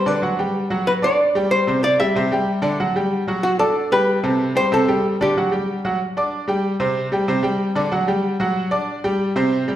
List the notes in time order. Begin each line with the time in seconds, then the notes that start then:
0.06 D3 D4 B4 D5
0.22 F#3 F#4 F#5
0.39 G3 G4 G5
0.70 F#3 F#4 F#5
0.87 B4
1.02 D4 D5 D6
1.35 G3 G4 G5
1.51 C5
1.67 C3 C4 C5
1.84 D5
2.00 G3 G4 E5 G5
2.15 C3 C4 C5
2.32 G3 G4 G5
2.62 D3 D4 D5
2.80 F#3 F#4 F#5
2.96 G3 G4 G5
3.28 F#3 F#4 F#5
3.43 F#4
3.59 D4 A4 D5 D6
3.92 G3 G4 B4 G5
4.23 C3 C4 A4
4.55 G3 G4 C5 G5
4.72 C3 C4 A4 C5
4.88 G3 G4 G5
5.21 D3 D4 G4 D5
5.37 F#3 F#4 F#5
5.51 G3 G4 G5
5.85 F#3 F#4 F#5
6.17 D4 D5 D6
6.48 G3 G4 G5
6.80 C3 C4 C5
7.12 G3 G4 G5
7.28 C3 C4 C5
7.43 G3 G4 G5
7.75 D3 D4 D5
7.92 F#3 F#4 F#5
8.08 G3 G4 G5
8.40 F#3 F#4 F#5
8.71 D4 D5 D6
9.04 G3 G4 G5
9.36 C3 C4 C5
9.68 G3 G4 G5